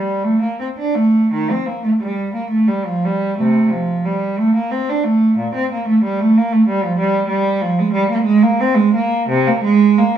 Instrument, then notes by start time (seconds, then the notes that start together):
cello
Already playing: G3
0.24 A3
0.41 A#3
0.60 C4
0.78 D4
0.95 A3
1.32 D#3
1.52 C4
1.66 A#3
1.84 A3
2.01 G3
2.34 A#3
2.50 A3
2.68 G3
2.86 F3
3.05 G3
3.38 C3 A3
3.71 F3
4.05 G3
4.39 A3
4.55 A#3
4.72 C4
4.89 D4
5.04 A3
5.38 A#2
5.55 C4
5.72 A#3
5.88 A3
6.04 G3
6.20 A3
6.38 A#3
6.53 A3
6.68 G3
6.84 F3
6.99 G3
7.28 G3
7.61 F3
7.79 G#3
7.93 G3
8.10 A#3
8.24 G#3
8.43 A#3
8.61 C4
8.75 G#3
8.95 A#3
9.29 C3
9.47 A#3
9.63 G#3
9.98 A#3